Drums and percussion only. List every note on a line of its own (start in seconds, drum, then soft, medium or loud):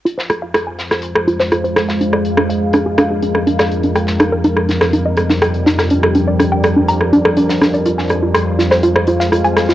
0.06 closed hi-hat medium
0.19 snare soft
0.30 cross-stick soft
0.30 closed hi-hat medium
0.54 cross-stick medium
0.54 closed hi-hat medium
0.78 snare soft
0.78 closed hi-hat medium
0.91 cross-stick soft
0.91 snare soft
1.02 closed hi-hat medium
1.15 cross-stick medium
1.28 closed hi-hat medium
1.39 snare soft
1.52 cross-stick soft
1.52 closed hi-hat medium
1.65 closed hi-hat soft
1.76 cross-stick medium
1.76 snare soft
1.76 closed hi-hat medium
1.89 snare soft
2.01 closed hi-hat medium
2.13 cross-stick soft
2.25 closed hi-hat medium
2.37 cross-stick medium
2.50 closed hi-hat medium
2.73 cross-stick soft
2.73 closed hi-hat medium
2.98 cross-stick medium
2.98 closed hi-hat medium
3.23 closed hi-hat medium
3.35 cross-stick soft
3.47 closed hi-hat medium
3.59 cross-stick medium
3.59 snare soft
3.72 closed hi-hat medium
3.83 closed hi-hat soft
3.96 cross-stick soft
3.96 closed hi-hat medium
4.07 snare soft
4.20 cross-stick medium
4.20 closed hi-hat medium
4.44 closed hi-hat medium
4.57 cross-stick soft
4.69 snare soft
4.69 closed hi-hat medium
4.81 cross-stick medium
4.81 snare soft
4.93 closed hi-hat medium
5.17 cross-stick soft
5.17 closed hi-hat medium
5.30 snare soft
5.42 cross-stick medium
5.42 closed hi-hat medium
5.54 closed hi-hat soft
5.66 snare soft
5.66 closed hi-hat medium
5.78 cross-stick soft
5.78 snare soft
5.90 closed hi-hat medium
6.03 cross-stick medium
6.15 closed hi-hat medium
6.39 cross-stick soft
6.39 closed hi-hat medium
6.63 cross-stick medium
6.63 closed hi-hat medium
6.88 closed hi-hat medium
7.01 cross-stick soft
7.13 closed hi-hat medium
7.25 cross-stick medium
7.37 closed hi-hat medium
7.49 snare soft
7.61 cross-stick soft
7.61 snare soft
7.61 closed hi-hat medium
7.74 closed hi-hat soft
7.86 closed hi-hat medium
7.99 snare soft
8.10 cross-stick soft
8.10 closed hi-hat medium
8.35 cross-stick medium
8.35 closed hi-hat medium
8.59 snare soft
8.59 closed hi-hat medium
8.71 cross-stick soft
8.71 snare soft
8.83 closed hi-hat medium
8.96 cross-stick medium
9.07 closed hi-hat medium
9.20 snare soft
9.32 cross-stick soft
9.32 closed hi-hat medium
9.45 closed hi-hat soft
9.57 cross-stick medium
9.57 snare soft
9.57 closed hi-hat medium
9.69 snare soft